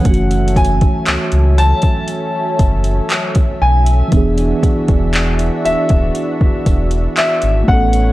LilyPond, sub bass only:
\new Staff \with { instrumentName = "Sub bass" } { \clef bass \time 4/4 \key fis \minor \tempo 4 = 59 fis,,4 cis,16 cis,8 r8. fis,,8 r8 b,,8 | e,,8 r16 e,,8. d,,16 d,,16 r16 e,,16 e,,8 r16 gis,,16 a,,8 | }